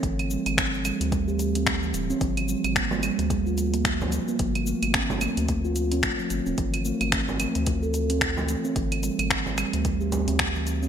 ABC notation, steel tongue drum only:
X:1
M:4/4
L:1/16
Q:"Swing 16ths" 1/4=110
K:Cmix
V:1 name="Steel tongue drum"
E, z G, z C z G,2 G, G2 C z E,2 C | F, z G, z B, z G,2 G, F2 B, z F,2 B, | F, z A, z C z A,2 A, F2 C z F,2 C | E, z A, z C z A,2 A, A2 C z E,2 C |
E, z G, z C z G,2 G, G2 C z E,2 C |]